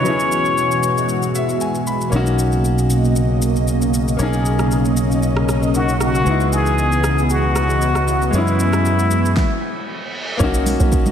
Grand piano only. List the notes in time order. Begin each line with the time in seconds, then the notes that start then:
0.03 F#3 B3 C#4
0.07 E4 G#4
1.35 E5
1.61 G#5
1.87 B5
2.10 A#3 C#4
2.14 D#4 F#4
4.17 A#3 C#4
4.21 D#4 G#4
5.73 A#3 C#4 D#4 F#4
6.24 G#3 B3
6.28 D#4 E4
8.30 G#3 B3
8.35 C#4 E4
10.37 A#3 C#4
10.42 D#4 F#4